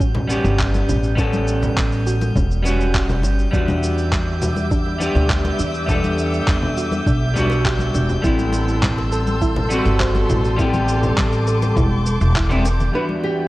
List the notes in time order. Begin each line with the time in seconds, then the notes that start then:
Already playing: A1 G3 B3 C#4 F#4 G6
0.00 C#4, kick, cabasa
0.15 high bongo, low conga
0.28 G3 B3 C#4, high conga, cabasa
0.32 G4
0.45 G1, cabasa
0.59 G4, kick, clap, high bongo, cabasa
0.74 high conga, cabasa
0.89 A1 C#4, low conga, cabasa
1.04 cabasa
1.16 G3 B3 C#4, kick, high bongo, cabasa
1.20 A4
1.33 high conga, cabasa
1.48 cabasa
1.62 high bongo, low conga, cabasa
1.77 A1, kick, clap, high conga, cabasa
1.92 cabasa
2.06 F#4, cabasa
2.21 high bongo, high conga, cabasa
2.36 E1 C#4, kick, low conga, cabasa
2.51 cabasa
2.63 G3 B3 C#4, high bongo, high conga, cabasa
2.67 F#4
2.81 cabasa
2.94 G4, kick, clap, cabasa
3.09 high conga, low conga, cabasa
3.23 G1 C#4, high bongo, cabasa
3.39 cabasa
3.51 E2 G3 B3 D4 E5 D6 E6, kick, cabasa
3.56 F#4
3.68 high conga, low conga, cabasa
3.83 high bongo, cabasa
3.98 cabasa
4.12 kick, clap, high conga, cabasa
4.42 F#4, high bongo, low conga, cabasa
4.56 high conga, cabasa
4.71 D4, kick, cabasa
4.86 high bongo
4.98 G3 B3 D4, high conga, cabasa
5.03 G4
5.15 D2, low conga, cabasa
5.30 G4, kick, clap, cabasa
5.45 high bongo, high conga, cabasa
5.59 E2 D4, cabasa
5.74 cabasa
5.86 G3 B3 D4, kick, high bongo, low conga, cabasa
5.91 A4
6.04 high conga, cabasa
6.18 cabasa
6.33 cabasa
6.47 E2, kick, clap, high bongo, high conga, cabasa
6.62 low conga
6.77 F#4, cabasa
6.91 high bongo, high conga, cabasa
7.06 B1 D4, kick, cabasa
7.34 G3 B3 D4, high conga, low conga, cabasa
7.38 F#4
7.50 high bongo, cabasa
7.65 G4, kick, clap, cabasa
7.79 high conga, cabasa
7.94 E1 D4, high bongo, cabasa
8.09 low conga, cabasa
8.22 A1 G3 B3 C4 E4 A4 A5 C6 E6, kick, cabasa
8.26 E4
8.39 high conga, cabasa
8.53 high bongo, cabasa
8.68 cabasa
8.82 kick, clap, high conga, low conga, cabasa
8.98 high bongo
9.12 A4, cabasa
9.27 high conga, cabasa
9.41 E4, kick, cabasa
9.56 high bongo, low conga
9.69 G3 B3 C4, high conga, cabasa
9.74 F#4
9.86 G1, cabasa
10.00 C5, kick, clap, high bongo, cabasa
10.15 high conga, cabasa
10.30 A1 E4, low conga, cabasa
10.45 cabasa
10.57 G3 B3 C4 E4 D6, kick, high bongo, cabasa
10.61 G4
10.74 high conga, low conga, cabasa
10.89 cabasa
11.03 high bongo, low conga, cabasa
11.18 A1, kick, clap, high conga, cabasa
11.33 cabasa
11.47 A4, cabasa
11.62 high bongo, high conga, cabasa
11.77 E1 E4, kick, low conga, cabasa
12.06 high bongo, high conga, cabasa
12.21 E1, cabasa
12.35 E4, kick, clap, cabasa
12.49 G3 B3 C4 E4, high conga, low conga, cabasa
12.65 G5, high bongo, cabasa
12.80 low conga, cabasa
12.92 E2 G3 B3 D4 F#4 B4 D5 E5 B6
12.97 F#4
13.09 high conga
13.24 G4, high bongo